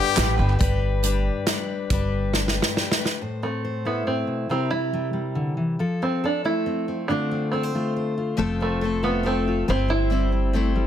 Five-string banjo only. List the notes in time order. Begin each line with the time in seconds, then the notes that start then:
Already playing: B4
3.43 A3
3.87 B3
4.07 C4
4.51 C4
4.71 E4
6.03 C4
6.25 D4
6.45 E4
7.08 D4
7.52 C4
8.62 A3
9.04 B3
9.26 C4
9.70 C4
9.90 E4